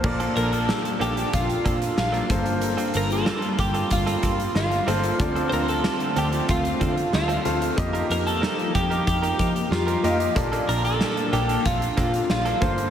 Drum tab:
CC |x---------------|----------------|----------------|----------------|
HH |-xxx-xxxxxxx-xxx|xxxx-xxxxxxx-xxx|xxxx-xxxxxxx-xxx|xxxx-xxxxxxx-xxx|
SD |----o-------o---|----o-------o---|----o-------o---|----o-------o---|
BD |o-------o-o---o-|------o-o-o-----|o-------o-o-----|o-----o-o-o-----|

CC |----------------|
HH |xxxx-xxxxxxx-xxx|
SD |----o-------o---|
BD |o-------o-o---o-|